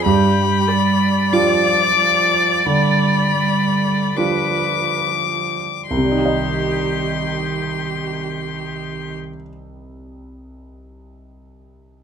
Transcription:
X:1
M:4/4
L:1/8
Q:1/4=39
K:Cm
V:1 name="Violin"
=b2 d'2 b2 d'2 | c'8 |]
V:2 name="Viola"
G d4- d =B z | G8 |]
V:3 name="Grand piano"
G,,2 [G,DF]2 D,2 [G,DF]2 | [C,,C,G,EGe]8 |]
V:4 name="Cello" clef=bass
G, G, F, F, G, G, F,2 | E,8 |]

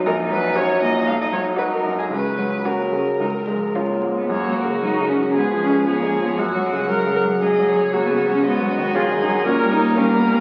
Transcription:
X:1
M:4/4
L:1/16
Q:1/4=116
K:F#
V:1 name="Violin"
A2 B2 c2 d2 e d c2 B A2 G | B4 A8- A2 z2 | c2 A2 A4 B4 c4 | f8 d2 c2 c4 |
d2 d6 c4 e4 |]
V:2 name="Viola"
z4 F4 z4 F4 | z4 F4 z4 E4 | F8 G4 G4 | F4 A2 A2 G4 F4 |
F4 G4 A4 A4 |]
V:3 name="Cello"
D16 | C4 A,2 C2 D2 E,2 G, A,2 B, | A,4 D2 C2 B,2 C2 B, A,2 B, | A,2 G,2 F,6 F,2 A, B,2 C |
B,4 E2 D2 C2 D2 C B,2 C |]
V:4 name="Grand piano" clef=bass
A,,,2 F,2 [CF]2 A,,2 B,,,2 F,2 [DF]2 F,,2 | C,,2 F,2 [CF]2 C,2 C,,2 G,2 [CE]2 G,,2 | (3F,,2 F,2 C,2 (3F,2 C,2 F,2 (3G,,2 E,2 G,2 (3E,2 G,2 E,2 | (3F,,2 F,2 C,2 (3F,2 C,2 F,2 (3C,2 F,2 C,2 (3F,2 C,2 F,2 |
(3G,,2 F,2 D,2 (3F,2 D,2 F,2 (3A,,2 =G,2 A,2 (3G,2 A,2 G,2 |]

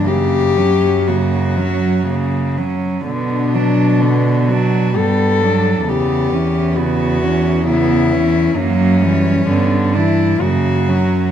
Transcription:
X:1
M:3/4
L:1/8
Q:1/4=64
K:F#phr
V:1 name="Cello"
G2 F3 z | D3 F A2 | G2 F2 E2 | C3 E F2 |]
V:2 name="Cello"
^A, C A, C A, C | B, D B, D B, D | B, C B, C B, C | ^A, G, B, D A, C |]
V:3 name="Cello" clef=bass
C, F, C, F, C, F, | D, F, D, F, G, F, | C, E, C, E, C, E, | F, E, D, E, C, F, |]
V:4 name="Cello" clef=bass
F,,6 | B,,4 G,,2 | E,,6 | F,,2 G,,2 F,,2 |]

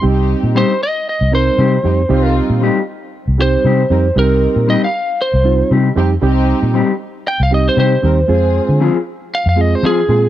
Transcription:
X:1
M:4/4
L:1/16
Q:"Swing 16ths" 1/4=116
K:Cm
V:1 name="Lead electric guitar"
z4 c2 e2 e2 c6- | c2 z8 c6 | B4 e f3 c4 z4 | z8 g f e c c4- |
c4 z4 f f e c A4 |]
V:2 name="String section"
[CEG]4 z8 z2 [CEG] z | [CEF]4 z8 z2 [CEB] z | [CEB]4 z8 z2 [CEG] z | [CEG]4 z8 z2 [CEB] z |
[CFA]4 z8 z2 [CFA] z |]
V:3 name="Clean electric guitar"
z4 [G,CEG]2 z6 [G,CEG]2 z2 | z4 [G,CEG]2 z6 [G,CEG]2 z2 | z4 [G,CEG]2 z6 [G,CEG]2 z2 | z4 [G,CEG]2 z6 [G,CEG]2 z2 |
z4 [F,CFA]2 z6 [F,CFA]2 z2 |]
V:4 name="Reed electric piano"
[G,CEG]4 z6 [G,CEB]2 z2 [G,CEG]2 | [G,CEG]4 z6 [G,CEG]2 z2 [G,CEG]2 | [G,CEG]4 z6 [G,CEF]2 z2 [G,CEG]2 | [G,CEG]4 z6 [G,CEG]2 z2 [G,CEG]2 |
[A,CFA]4 z6 [A,CFA]2 z2 [A,CFA]2 |]
V:5 name="Fingered electric bass" clef=bass
C,,3 B,,2 z4 C,,3 C,2 F,,2 | C,,3 B,,2 z4 C,,3 C,2 F,,2 | C,,3 B,,2 z4 C,,3 C,2 F,,2 | C,,3 B,,2 z4 C,,3 C,2 E,,2 |
F,,3 D,2 z4 F,,3 F,2 B,,2 |]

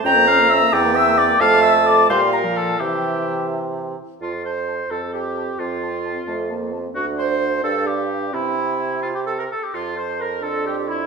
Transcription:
X:1
M:6/8
L:1/16
Q:3/8=87
K:F
V:1 name="Flute"
g'2 f'2 e'2 d'2 e'2 d'2 | f'2 e'2 d'2 c'2 b2 a2 | g6 z6 | a2 a2 a2 a2 a2 a2 |
a2 a2 a2 a2 a2 a2 | ^f6 =f6 | g8- g2 z2 | a6 c'6 |]
V:2 name="Clarinet"
b6 g6 | a6 f6 | e8- e z3 | F2 c4 A2 G4 |
F8- F2 z2 | ^F2 c4 A2 G4 | E6 F G A B A G | F2 c2 B2 A2 G2 E2 |]
V:3 name="Oboe"
g2 f2 e2 d2 e2 d2 | f2 e2 d2 c2 B2 A2 | G6 z6 | F2 c4 A2 G4 |
F8- F2 z2 | ^F2 c4 A2 G4 | E6 F G A B A G | F2 c2 B2 A2 G2 E2 |]
V:4 name="French horn"
_D B, D B, D B, C B, C B, C B, | A,6 G,3 F,3 | E,8- E,2 z2 | z6 C6- |
C6 A,2 B,2 C2 | D6 D6 | C8- C z3 | z6 D6 |]
V:5 name="Bassoon" clef=bass
F,,6 E,,6 | F,,6 B,,6 | C,8- C,2 z2 | F,,6 F,,6 |
F,,6 F,,6 | D,,6 G,,6 | C,8- C,2 z2 | F,,12 |]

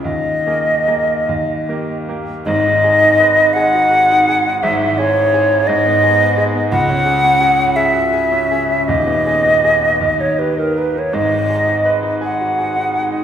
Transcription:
X:1
M:6/8
L:1/16
Q:3/8=55
K:G#m
V:1 name="Flute"
d8- d2 z2 | d6 f6 | e2 c4 d6 | f6 e6 |
d6- d c B A B c | d4 z2 f6 |]
V:2 name="Grand piano"
D,,2 [A,GA]2 [A,GA]2 D,,2 [A,=GA]2 [A,GA]2 | [G,,,G,,] D G D B D G F G D G D | [G,,,G,,] E G E G E G,, B, G B, G B, | C,, C G C G C G F G C G C |
[D,,,D,,] B, G B, G B, D,, D =G D A D | [G,,,G,,] D G D B D G F G D G D |]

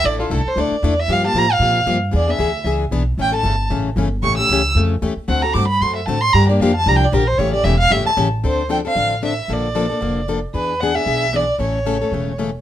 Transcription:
X:1
M:4/4
L:1/8
Q:"Swing" 1/4=228
K:Aphr
V:1 name="Violin"
d F A c d3 e | f a b f3 z2 | d e3 z4 | g a3 z4 |
^c' e'3 z4 | ^f b d' =b c' e a c' | b d f a (3b g d B c | ^c d e f e a z2 |
c2 g f3 e2 | d6 z2 | =B2 ^f e3 d2 | ^c6 z2 |]
V:2 name="Steel-string acoustic guitar"
[D,A,DEA] [DEA] [D,A,DEA] z [D,A,DEA] z [D,A,DEA] z | [C,F,B,FG] [B,FG] [C,F,B,FG] z [C,F,B,FG] z [C,F,B,FG] z | [E,=B,D^G] [B,DG] [E,B,DG] z [E,B,DG] z [E,B,DG] z | [^C,E,A,^CA] [A,CA] [C,E,A,CA] z [C,E,A,CA] z [C,E,A,CA] z |
[^C,E,A,^CG] [A,CG] [C,E,A,CG] z [C,E,A,CG] z [C,E,A,CG] z | [D,A,C^FA] [CFA] [D,A,CFA] z [D,A,CFA] z [D,A,CFA] z | [D,F,B,DG] [B,DG] [D,F,B,DG] z [D,F,B,DG] z [D,F,B,DG] z | [^C,E,A,^CG] [A,CG] [C,E,A,CG] z [C,E,A,CG] z [C,E,A,CG] z |
[D,F,CDA] z [D,F,CDA] [CDA] [D,F,CDA] z [D,F,CDA] z | [D,F,B,DA] z [D,F,B,DA] [B,DA] [D,F,B,DA] z [D,F,B,DA] z | [E,=B,D^G] z [E,B,DG] [B,DG] [E,B,DG] z [E,B,DG] z | [^C,E,A,^CA] z [C,E,A,CA] [A,CA] [C,E,A,CA] z [C,E,A,CA] z |]
V:3 name="Upright bass" clef=bass
A,,,2 C,, z D,, z E,,2 | G,,2 A,,2 B,,2 G,,2 | E,,2 D,,2 ^C,,2 =B,,,2 | A,,,2 G,,,2 A,,,2 G,,,2 |
A,,,2 ^C,,2 F,,2 E,, z | D,,2 G,,2 ^F,,2 A,,2 | G,,2 z2 C,,2 B,,,2 | A,,,2 E,,,2 G,,, z A,,,2 |
D,,4 A,,,4 | B,,,4 F,,,4 | E,,4 =B,,,4 | A,,,4 E,,,4 |]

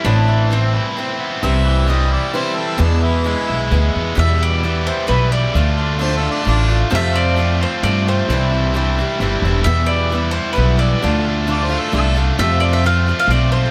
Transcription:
X:1
M:3/4
L:1/16
Q:1/4=131
K:Ephr
V:1 name="Mandolin"
D4 C6 z2 | z12 | z12 | e2 d4 c2 B2 d2- |
d6 z6 | e2 d4 c2 d2 c2- | c6 z6 | e2 d4 c2 B2 d2- |
d6 z6 | e2 d e f3 f d2 c2 |]
V:2 name="Harmonica"
z12 | e4 ^d2 =d2 c2 A2 | D2 E8 z2 | z12 |
z4 (3c2 A2 D2 D3 z | z12 | z12 | z12 |
z4 (3d2 c2 A2 A3 z | z12 |]
V:3 name="Overdriven electric guitar"
A,,2 E,2 C2 E2 C2 B,2 | C,2 E,2 G,2 E2 G,2 C2 | E,,2 E,2 ^G,2 E2 G,2 B,2 | [E,,B,,E,G,B,E]2 [E,G,B,E]2 [E,G,B,E]2 [E,G,B,E]2 [E,,B,,E,G,B,E]2 [E,G,B,E]2 |
[D,A,DF]2 [A,DF]2 [D,A,DF]2 [A,DF]2 [D,A,DF]2 [A,DF]2 | [F,,C,F,A,CF]2 [F,A,CF]2 [F,A,CF]2 [F,A,CF]2 [F,,C,F,A,CF]2 [F,A,CF]2 | [C,E,G,CE]2 [G,CE]2 [E,G,CE]2 [G,CE]2 [C,E,G,CE]2 [G,CE]2 | [E,,B,,E,G,B,E]2 [E,G,B,E]2 [E,G,B,E]2 [E,G,B,E]2 [E,,B,,E,G,B,E]2 [E,G,B,E]2 |
[D,A,DF]2 [A,DF]2 [D,A,DF]2 [A,DF]2 [D,A,DF]2 [A,DF]2 | [F,,C,F,A,CF]2 [F,A,CF]2 [F,A,CF]2 [F,A,CF]2 [F,,C,F,A,CF]2 [F,A,CF]2 |]
V:4 name="Steel-string acoustic guitar"
[A,,E,B,CE]4 [E,CE]4 [E,CE]4 | [C,E,G,CE]4 [E,G,CE]4 [E,G,CE]4 | [E,,B,,E,^G,B,E]4 [E,G,B,E]4 [E,G,B,E]4 | [E,,B,,E,G,B,E]4 [E,G,B,E]4 [E,G,B,E]4 |
[D,A,DF]4 [D,A,DF]4 [D,A,DF]2 [A,DF]2 | [F,,C,F,A,CF]4 [F,A,CF]4 [F,A,CF]2 [F,A,CF]2 | [C,E,G,DE]4 [E,G,DE]2 [G,DE]2 [E,G,DE]2 [G,DE]2 | [E,,B,,E,G,B,E]4 [E,G,B,E]4 [E,G,B,E]4 |
[D,A,DF]4 [D,A,DF]2 [A,DF]2 [D,A,DF]2 [A,DF]2 | [F,,C,F,A,CF]4 [F,A,CF]2 [F,A,CF]2 [F,A,CF]4 |]
V:5 name="Upright bass" clef=bass
A,,,8 z4 | C,,8 z4 | E,,6 B,,,2 D,,2 E,,2 | E,,8 B,,,4 |
D,,8 A,,,4 | F,,8 G,,4 | C,,8 G,,,2 E,,,2 | E,,8 B,,,4 |
D,,8 C,,4 | F,,8 B,,,4 |]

